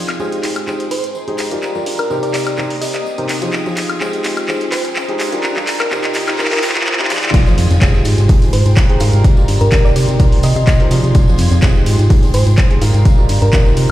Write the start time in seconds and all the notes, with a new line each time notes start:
Already playing: F3 D#4 F4 G#4 C5 F5 D#6 G#6, riser
0.09 F2, clap, closed hi-hat, tambourine, high woodblock
0.20 F1 G#3 D#4 G4 G#4 C5, tambourine
0.32 closed hi-hat, tambourine
0.43 G#2 G#4 G5 C6, clap, open hi-hat, tambourine
0.56 G#2, closed hi-hat, tambourine, high woodblock
0.67 G#1 G#3 D#4 G4 G#4 C5, clap, tambourine
0.80 closed hi-hat, tambourine
0.91 G#2 C5, open hi-hat, tambourine
1.04 G#2, closed hi-hat, tambourine
1.15 G#1, tambourine
1.28 G#3 D#4 G4 G#4 C5, closed hi-hat
1.38 G#2, clap, open hi-hat, tambourine
1.51 G#2 G3 F4 G4 A#4 D5, closed hi-hat, tambourine
1.62 G1 G4 F5 A#5, clap, tambourine
1.75 G3 F4 G4 A#4 D5, tambourine
1.86 G2, open hi-hat, tambourine
1.99 G2 A#4, closed hi-hat, tambourine, high woodblock
2.10 C3 D#4 G4 A#4 C5, tambourine
2.23 D5, closed hi-hat, tambourine
2.34 C3 C4 C5 D5 D#6, clap, open hi-hat, tambourine
2.46 C3, closed hi-hat, tambourine, high woodblock
2.58 C2 C3 D#4 G4 A#4 C5, clap, tambourine
2.70 open hi-hat, tambourine
2.82 C3 D#5, open hi-hat, tambourine
2.94 C3 D#5, clap, closed hi-hat, tambourine
3.05 C2, tambourine
3.18 C3 D#4 G4 A#4 C5, closed hi-hat
3.29 C3, clap, open hi-hat, tambourine
3.42 C3 F3 D#4 F4 G#4 C5, closed hi-hat, tambourine
3.52 F5 G#6, clap, tambourine
3.66 F3 D#4 F4 G#4 C5, tambourine
3.77 F2, clap, open hi-hat, tambourine
3.89 F2, closed hi-hat, tambourine, high woodblock
4.01 G#3 D#4 G4 G#4 C5, clap, tambourine
4.13 closed hi-hat, tambourine
4.24 G#2 G#4 G5 C6, clap, open hi-hat, tambourine
4.37 G#2, closed hi-hat, tambourine, high woodblock
4.48 G#1 G#3 D#4 G4 G#4 C5, clap, tambourine
4.60 closed hi-hat, tambourine
4.72 G#2 C5, clap, open hi-hat, tambourine
4.85 G#2, closed hi-hat, tambourine
4.95 G#1, clap, tambourine
5.09 G#3 D#4 G4 G#4 C5, closed hi-hat
5.20 G#2, clap, open hi-hat, tambourine
5.32 G#2 G3 F4 G4 A#4 D5, closed hi-hat, tambourine
5.43 G1 F4 G4 F5 A#5, clap, tambourine, noise sweep
5.56 G3 F4 G4 A#4 D5, clap, tambourine
5.67 G2, clap, open hi-hat, tambourine
5.80 G2 A#4, clap, closed hi-hat, tambourine, high woodblock
5.91 C3 D#4 G4 A#4 C5, clap, tambourine
6.03 clap, closed hi-hat, tambourine
6.14 C3 C4 C5 A#5 D#6, clap, open hi-hat, tambourine
6.27 C3, clap, closed hi-hat, tambourine, high woodblock
6.39 C2 C3 D#4 G4 A#4 C5, clap, tambourine
6.45 clap
6.51 A#4, clap, open hi-hat, tambourine
6.57 clap
6.63 C3, clap, open hi-hat, tambourine
6.69 clap
6.75 C3, clap, closed hi-hat, tambourine
6.81 clap
6.86 C2, clap, tambourine
6.93 clap
6.99 C3 D#4 G4 A#4 C5, clap, closed hi-hat
7.05 clap
7.10 C3 F3 D#4 F4 G#4 D5, clap, open hi-hat, tambourine
7.17 clap
7.23 C3, clap, closed hi-hat, tambourine
7.28 clap
7.34 F1 F5 D#6 G#6, kick, closed hi-hat, ride, tambourine, crash, impact
7.46 F3 D#4 F4 G#4 C5, snare, tambourine
7.58 F2, open hi-hat, ride, tambourine
7.71 F2, snare, closed hi-hat, tambourine
7.81 F1 G#3 D#4 G4 G#4 C5, kick, snare, clap, closed hi-hat, ride, tambourine
7.94 tambourine
8.05 G#2 G#4 G5 C6, open hi-hat, ride, tambourine
8.17 G#2, snare, closed hi-hat, tambourine
8.22 A#5
8.29 G#1 G#3 D#4 G4 G#4 C5, kick, closed hi-hat, open hi-hat, tambourine
8.42 snare, closed hi-hat, tambourine
8.53 G#2 C5, open hi-hat, ride, tambourine
8.65 G#2, closed hi-hat, tambourine
8.76 G#1, kick, snare, clap, closed hi-hat, ride, tambourine
8.89 G#3 D#4 G4 G#4 C5, closed hi-hat, ride
9.00 G#2 G3 F4 G4 A#4 F5, open hi-hat, ride, tambourine
9.13 G#2, closed hi-hat, tambourine
9.24 G1 F4 G4 F5 A#5, kick, closed hi-hat, ride, tambourine
9.37 G3 F4 G4 A#4 D5, tambourine
9.48 G2, open hi-hat, ride, tambourine
9.61 G2 A#4, closed hi-hat, tambourine
9.71 G1 C3 D#4 G4 A#4 C5, kick, snare, clap, closed hi-hat, ride, tambourine
9.85 D5, snare, tambourine
9.96 C3 C4 C5 D5 C6, open hi-hat, ride, tambourine
10.07 C3, closed hi-hat, tambourine
10.20 C2 C3 D#4 G4 A#4 C5, kick, closed hi-hat, ride, tambourine
10.32 open hi-hat, tambourine
10.43 C3 D#5, open hi-hat, ride, tambourine
10.56 C3 D#5, closed hi-hat, tambourine
10.67 C2, kick, snare, clap, closed hi-hat, ride, tambourine
10.80 C3 D#4 G4 A#4 C5, closed hi-hat, ride
10.91 C3 F3 D#4 F4 G#4 D5, snare, open hi-hat, ride, tambourine
11.04 C3, closed hi-hat, tambourine
11.15 F1 F5 G#6, kick, closed hi-hat, ride, tambourine
11.28 F3 D#4 F4 G#4 C5, snare, tambourine
11.38 F2, open hi-hat, ride, tambourine
11.51 F2, snare, closed hi-hat, tambourine
11.62 F1 G#3 D#4 G4 G#4 C5, kick, snare, clap, closed hi-hat, ride, tambourine
11.76 tambourine
11.86 G#2 G#4 G5 C6, open hi-hat, ride, tambourine
11.98 G#2, snare, closed hi-hat, tambourine
12.10 G#1 G#3 D#4 G4 G#4 C5, kick, closed hi-hat, open hi-hat, tambourine
12.23 snare, closed hi-hat, tambourine
12.34 G#2 C5, open hi-hat, ride, tambourine
12.46 G#2, closed hi-hat, tambourine
12.57 G#1, kick, snare, clap, closed hi-hat, ride, tambourine
12.71 G#3 D#4 G4 G#4 C5, closed hi-hat, ride
12.81 G#2 G3 F4 G4 A#4 F5, open hi-hat, ride, tambourine
12.94 G#2, closed hi-hat, tambourine
13.05 G1 F4 G4 F5 A#5, kick, closed hi-hat, ride, tambourine
13.18 G3 F4 G4 A#4 D5, tambourine
13.29 G2, open hi-hat, ride, tambourine
13.42 G2 A#4, closed hi-hat, tambourine
13.53 G1 C3 D#4 G4 A#4 C5, kick, snare, clap, closed hi-hat, ride, tambourine
13.65 snare, tambourine
13.77 C3 C5 C6, open hi-hat, ride, tambourine